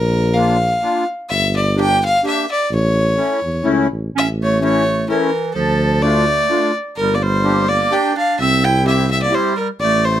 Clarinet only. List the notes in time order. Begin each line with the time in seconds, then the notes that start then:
4.16 C#4
4.39 A3
4.62 A3
5.10 E3
5.55 F3
6.03 A3
6.98 G3
7.15 A#3
7.23 G3
7.68 A#3
7.94 D4
8.16 D4
8.41 C4
8.65 E4
8.86 C4
9.12 C4
9.24 A#3
9.35 G3
9.61 G3
9.83 A3
10.09 A3